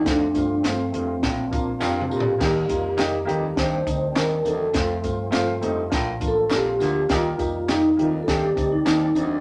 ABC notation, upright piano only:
X:1
M:4/4
L:1/8
Q:1/4=102
K:Fmix
V:1 name="Upright piano"
[A,CF] [A,CF] [A,CF] [A,CF] [B,DF] [B,DF] [B,DF] [B,DF] | [B,EG] [B,EF] [B,EG] [B,EG] [CDE] [CDE] [CDE] [CDE] | [A,CF] [A,CF] [A,CF] [A,CE] [B,DF] [B,DF] [B,DF] [B,DF] | [B,EG] [B,EG] [B,EG] [B,EG] [CDE] [CDE] [CDE] [CDE] |]